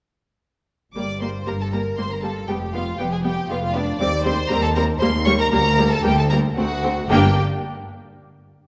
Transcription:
0.95 double bass section G1, cello section G2, viola section G3 A#3, violin section D5 D6
1.21 viola section G3 A#3, violin section C5 C6
1.47 double bass section G1, cello section G2, viola section G3 A#3, violin section A#4 A#5
1.60 violin section A4 A5
1.72 viola section G3 A#3, violin section A#4 A#5
1.97 double bass section G1, cello section G2, viola section G3 A#3, violin section C5 C6
2.10 violin section A#4 A#5
2.23 viola section G3 A#3, violin section A4 A5
2.48 double bass section F1, cello section F2, viola section G3 B3, violin section G4 G5
2.74 viola section G3 B3, violin section F4 F5
2.99 double bass section F1, cello section F2, viola section G3 B3, violin section G4 G5
3.12 violin section G#4 G#5
3.25 viola section G3 B3, violin section G4 G5
3.50 double bass section F1, cello section F2, viola section G3 B3, violin section F4 F5
3.63 violin section F4 F5
3.75 viola section G3 B3, violin section D4 D5
4.00 cello section D#2, double bass section D#2, viola section G3 C4, violin section D5 D6
4.25 viola section G3 C4, violin section C5 C6
4.50 double bass section D#2, cello section D#2, viola section G3 C4, violin section A#4 A#5
4.63 violin section A4 A5
4.75 viola section G3 C4, violin section A#4 A#5
5.00 double bass section D#2, cello section D#2, viola section G3 A#3, violin section C5 C6
5.26 viola section G3 A#3, violin section C#5 C#6
5.39 violin section A#4 A#5
5.52 double bass section D2, cello section D2, viola section G3 A#3, violin section A#4 A#5
5.79 viola section G3 A#3
5.92 violin section A4 A5
6.04 cello section D2, double bass section D2, viola section G3 A#3, violin section G4 G5
6.17 violin section A4 A5
6.31 viola section G3 A#3, violin section A#4 A#5
6.56 cello section D2, double bass section D2, viola section A3 C4, violin section F#4 F#5
6.84 viola section A3 C4
7.09 double bass section G1, cello section G2, viola section A#3 D4, violin section G4 G5

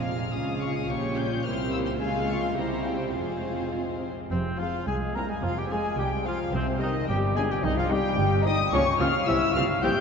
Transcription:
Already playing: double bass section F1, cello section F2, french horn section G#3 F4, viola section C4 F4, violin section G#4 F5
0.06 violin section F6
0.33 double bass section C#2, cello section C#3, viola section C#4 F4, violin section G#4 F5 D#6
0.61 violin section C#6
0.76 violin section D#6
0.89 double bass section A#1, cello section A#2, french horn section G3, viola section C#4 F4, violin section G4 C#5 C#6
1.17 violin section G6
1.44 double bass section C2, cello section C3, viola section A#3 E4, french horn section A#3 G4, violin section G4 C5 F6
1.72 violin section E6
1.87 violin section C6
2.00 double bass section C#2, cello section C#3, viola section G#3 F4, french horn section G#3 F4, violin section F4 F5 G#5
2.28 violin section C#6
2.42 violin section C6
2.56 double bass section C2, cello section C3, french horn section G3 E4, viola section C4 E4, violin section G4 C5 A#5
2.84 violin section G5
3.13 double bass section F1, cello section F2, french horn section G#3 F4, viola section C4 F4, violin section G#4 C5 F5
4.30 double bass section F1, cello section F2, french horn section C3, clarinet C4, cor anglais C4, violin section C5, flute C5
4.58 french horn section F3, viola section G#3 C4, violin section F4 F5, cor anglais F4, clarinet F4, flute F5
4.86 double bass section C2, cello section C2, french horn section G#3, cor anglais G#4, clarinet G#4, flute G#5, violin section G#5
5.14 viola section G3 C4, french horn section A#3, violin section E4 G4 A#5, cor anglais A#4, clarinet A#4, flute A#5
5.28 french horn section G#3, clarinet G#4, cor anglais G#4, flute G#5, violin section G#5
5.43 double bass section F1, cello section F2, french horn section F3, clarinet F4, cor anglais F4, flute F5, violin section F5
5.57 french horn section G3, clarinet G4, cor anglais G4, flute G5, violin section G5
5.70 viola section G#3 C4, french horn section G#3, violin section C4 F4 G#5, clarinet G#4, cor anglais G#4, flute G#5
5.97 double bass section C2, cello section C2, french horn section G3, cor anglais G4, clarinet G4, violin section G5, flute G5
6.25 french horn section F3, viola section G#3 C4, violin section C4 F4 F5, clarinet F4, cor anglais F4, flute F5
6.52 double bass section C2, cello section C3, timpani C3, french horn section C3, clarinet C4, cor anglais C4, violin section C5, flute C5
6.80 french horn section D#3, viola section G3 C4, violin section C4 D#4 D#5, clarinet D#4, cor anglais D#4, flute D#5
7.08 double bass section G1, cello section G2, french horn section G3, cor anglais G4, clarinet G4, flute G5, violin section G5
7.35 viola section G3 B3, french horn section G#3, violin section D4 F4 G#5, cor anglais G#4, clarinet G#4, flute G#5
7.49 french horn section G3, clarinet G4, cor anglais G4, flute G5, violin section G5
7.63 double bass section C2, cello section C3, timpani C3, french horn section D#3, clarinet D#4, cor anglais D#4, flute D#5, violin section D#5
7.75 french horn section F3, clarinet F4, flute F5, violin section F5
7.79 cor anglais F4
7.89 french horn section G3, viola section G3 C4, violin section D#4 G5, cor anglais G4, clarinet G4, flute G5
8.18 double bass section G1, cello section G2
8.45 viola section G3 C4, french horn section D#4, violin section D#4 D#6, clarinet D#5, cor anglais D#5, flute D#6
8.72 double bass section C#2, cello section C#3, viola section F3 A#3, french horn section C#4, violin section C#4 F4 C#6, clarinet C#5, cor anglais C#5, flute C#6
8.99 double bass section C#2, cello section C#3, viola section F3 A#3, violin section C#4 F4 F6, french horn section F4, cor anglais F5, clarinet F5, flute F6
9.27 double bass section C2, cello section C3, viola section E3 G3, violin section C4 G4 E6, french horn section E4, clarinet E5, cor anglais E5, flute E6
9.54 double bass section C2, cello section C3, viola section E3 G3, violin section C4 G4 F6, french horn section F4, cor anglais F5, clarinet F5, flute F6
9.82 double bass section A#1, cello section A#2, viola section E3 G3, violin section C4 G4 G6, french horn section G4, clarinet G5, cor anglais G5, flute G6

